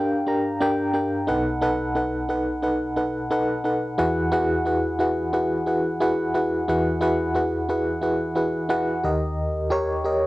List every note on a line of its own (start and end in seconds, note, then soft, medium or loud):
0.00 1.25 G2 medium
0.00 0.27 D4 loud
0.00 0.27 G4 loud
0.00 0.27 A#4 loud
0.00 1.31 F5 loud
0.00 0.62 G5 loud
0.27 0.54 D4 medium
0.27 0.54 G4 medium
0.27 0.54 A#4 medium
0.27 0.55 A#5 medium
0.60 0.88 D4 loud
0.60 0.88 G4 loud
0.60 0.88 A#4 loud
0.60 0.88 G5 loud
0.93 1.21 D4 medium
0.93 1.21 G4 medium
0.93 1.21 A#4 medium
0.93 1.22 G5 loud
1.27 3.94 B1 medium
1.27 3.94 B2 medium
1.27 1.55 D#4 loud
1.27 1.55 A4 loud
1.27 1.55 B4 medium
1.27 1.55 F#5 loud
1.61 1.89 D#4 loud
1.61 1.89 A4 loud
1.61 1.89 B4 loud
1.61 1.89 F#5 loud
1.95 2.23 D#4 medium
1.95 2.23 A4 medium
1.95 2.23 B4 medium
1.95 2.23 F#5 loud
2.29 2.56 D#4 medium
2.29 2.56 A4 medium
2.29 2.57 B4 medium
2.29 2.57 F#5 loud
2.63 2.90 D#4 medium
2.63 2.90 A4 medium
2.63 2.90 B4 medium
2.63 2.90 F#5 loud
2.96 3.24 D#4 medium
2.96 3.24 A4 medium
2.96 3.24 B4 medium
2.96 3.24 F#5 medium
3.31 3.58 D#4 loud
3.31 3.58 A4 loud
3.31 3.58 B4 loud
3.31 3.58 F#5 loud
3.64 3.91 D#4 medium
3.64 3.92 A4 medium
3.64 3.92 B4 medium
3.64 3.92 F#5 medium
3.98 6.64 E2 medium
3.98 6.64 E3 medium
3.98 4.25 E4 loud
3.98 4.25 F#4 loud
3.98 4.25 G#4 loud
3.98 4.26 B4 medium
3.98 4.26 F#5 loud
4.32 4.59 E4 loud
4.32 4.59 F#4 loud
4.32 4.59 G#4 loud
4.32 4.59 B4 loud
4.32 4.59 F#5 loud
4.65 4.92 E4 medium
4.65 4.93 F#4 medium
4.65 4.93 G#4 medium
4.65 4.93 B4 medium
4.65 4.93 F#5 loud
4.99 5.26 E4 medium
4.99 5.26 F#4 medium
4.99 5.26 G#4 medium
4.99 5.27 B4 medium
4.99 5.27 F#5 loud
5.33 5.60 E4 medium
5.33 5.60 F#4 medium
5.33 5.60 G#4 medium
5.33 5.60 B4 medium
5.33 5.60 F#5 loud
5.66 5.94 E4 medium
5.66 5.94 F#4 medium
5.66 5.94 G#4 medium
5.66 5.94 B4 medium
5.66 5.94 F#5 medium
6.00 6.27 E4 loud
6.00 6.28 F#4 loud
6.00 6.28 G#4 loud
6.00 6.28 B4 loud
6.00 6.28 F#5 loud
6.34 6.61 E4 medium
6.34 6.61 F#4 medium
6.34 6.62 G#4 medium
6.34 6.62 B4 medium
6.34 6.62 F#5 loud
6.68 9.00 E2 medium
6.68 9.01 E3 medium
6.68 6.95 E4 loud
6.68 6.95 F#4 loud
6.68 6.96 G#4 loud
6.68 6.96 B4 loud
6.68 6.96 F#5 loud
7.01 7.28 E4 loud
7.01 7.28 F#4 loud
7.01 7.28 G#4 loud
7.01 7.29 B4 loud
7.01 7.29 F#5 loud
7.35 7.62 E4 medium
7.35 7.62 F#4 medium
7.35 7.62 G#4 medium
7.35 7.62 B4 medium
7.35 7.63 F#5 loud
7.69 7.96 E4 medium
7.69 7.96 F#4 medium
7.69 7.96 G#4 medium
7.69 7.96 B4 medium
7.69 7.96 F#5 loud
8.02 8.29 E4 medium
8.02 8.29 F#4 medium
8.02 8.30 G#4 medium
8.02 8.30 B4 medium
8.02 8.30 F#5 loud
8.35 8.63 E4 medium
8.35 8.63 F#4 medium
8.35 8.63 G#4 medium
8.35 8.63 B4 medium
8.35 8.64 F#5 medium
8.69 8.97 E4 loud
8.69 8.97 F#4 loud
8.69 8.97 G#4 loud
8.69 8.97 B4 loud
8.69 8.97 F#5 loud
9.03 10.27 D#2 medium
9.03 10.27 D#3 medium
9.03 9.58 G4 medium
9.03 9.58 A#4 medium
9.03 9.58 D#5 loud
9.70 9.98 G4 loud
9.70 9.98 A#4 loud
9.70 9.98 C#5 loud
10.04 10.27 G4 loud
10.04 10.27 A#4 medium
10.04 10.27 D#5 loud